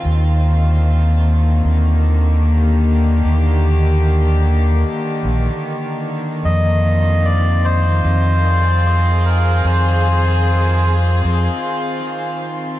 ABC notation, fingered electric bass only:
X:1
M:4/4
L:1/8
Q:"Swing 16ths" 1/4=75
K:Fdor
V:1 name="Fingered electric bass" clef=bass
E,,4 E,,4 | E,,4 z B,,, z2 | F,,4 F,,4 | F,,4 F,, z3 |]